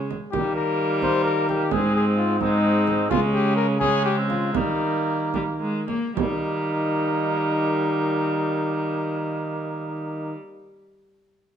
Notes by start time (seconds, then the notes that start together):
Already playing: G#3
0.11 frame drum
0.31 D#3 G3 A#3 G4, frame drum
0.56 A#4
1.02 C5, frame drum
1.25 A#4
1.49 G4, frame drum
1.71 G#2 G#3 C4 G#4, frame drum
1.96 G#4
2.17 F4
2.40 G#3 C4 D#4, frame drum
2.87 frame drum
3.10 C#3 G#3 C#4 F4, frame drum
3.34 G4
3.56 A#4
3.80 G#3 C#4 G#4, frame drum
4.05 G4
4.18 C4
4.29 F4, frame drum
4.52 D#3 A#3 D#4, frame drum
4.56 G3
5.34 G3, frame drum
5.60 G#3
5.87 A#3, frame drum
6.15 D#3 G3 A#3 D#4, frame drum